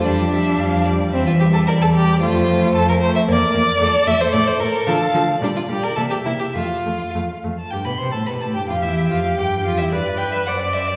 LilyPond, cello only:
\new Staff \with { instrumentName = "Cello" } { \clef bass \time 2/4 \key f \major \tempo 4 = 110 f,4 f,4 | e,4 e,4 | f,4 f,4 | f,8 f,8 f,8 f,8 |
a,8 a,8 d8 d8 | bes,8 bes,8 c8 c8 | f,8 f,8 f,8 f,8 | \key c \major g,16 b,16 c16 a,16 b,16 a,16 g,16 f,16 |
e,8 f,8 g,8 f,16 e,16 | g,4 fis,4 | }